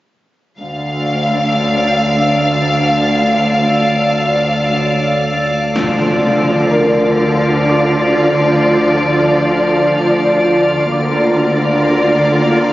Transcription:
0.59 D2 A4 D5 F5
1.88 G5
5.75 D2 D3 F3 F4 D5 F5, impact
6.71 A#4 A#5
7.69 D5 D6
10.91 D2 D3 A#3 F4 A#4 D5 F5 D6

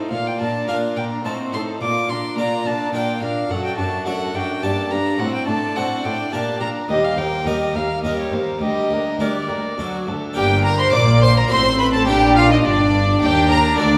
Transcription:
Already playing: D#4 F4 A4 C5
0.11 A#2 A#3 F4 D5 F5
0.26 G5
0.40 A#2 D4 A#4 A5
0.68 A#2 A#3 D4 F4 A#4 F5
0.96 A#2 D4 A#4 G5
1.24 A2 C4 D#4 F#4 C5 A5
1.52 A2 D#4 A4 C6
1.81 A#2 A#3 F4 A#4 D6
2.09 A#2 D4 A#4 C6
2.37 A#2 A#3 D4 F4 D5 A#5
2.65 A#2 D4 A#4 A5
2.93 A#2 A#3 D4 F4 A#4 D5 G5
3.21 A#2 D4 A#4 F5
3.50 F#2 F#4 A4 F#5
3.65 G5
3.78 F#2 D4 F#4 A5
4.06 F#2 A3 D4 F#4 A4 D5 F#5
4.34 F#2 D4 F#4 G5
4.62 G2 A#3 D4 G4 D5 A5
4.91 G2 D4 A#4 A#5
5.19 A2 C4 F#4 D5 F#5
5.34 G5
5.47 A2 D4 A4 A5
5.76 A2 C4 D4 F#4 C5 F#5
6.04 A2 D4 A4 G5
6.32 A#2 A#3 D4 G4 A#4 A5
6.60 A#2 D4 A#4 A#5
6.89 D#2 G3 G4 C5 D#5
7.04 F5
7.17 D#2 A#3 A#4 G5
7.46 D#2 G3 D#4 G4 A#4 D#5
7.75 D#2 A#3 A#4 F5
8.03 D#2 G3 C#4 G4 A#4 D#5
8.19 C#5
8.32 D#2 A#3 A#4 C5
8.61 D2 G3 G4 A#4 D#5
8.90 D2 A#3 A#4
9.19 D2 G3 D4 G4 A#4 D5
9.48 D2 A#3 A#4
9.78 D2 F#3 D4 F#4 A4
10.07 D2 A3 A4
10.33 G1 G2 A#3 D4 G4 A#4 G5
10.64 A#4 A#5
10.79 C5 C6
10.93 A#1 A#2 A#3 D5 D6
11.22 C5 C6
11.36 A#4 A#5
11.48 A1 A2 C4 F#4 A4 C5 C6
11.79 B4 B5
11.93 A4 A5
12.06 A#1 A#2 D4 G4 G5
12.36 F4 F5
12.50 D#4 D#5
12.65 G1 G2 D4 D5
13.21 D#2 G4 G5
13.49 A#4 A#5
13.74 A3 D4 F4 D5
13.79 D2 D4 D5

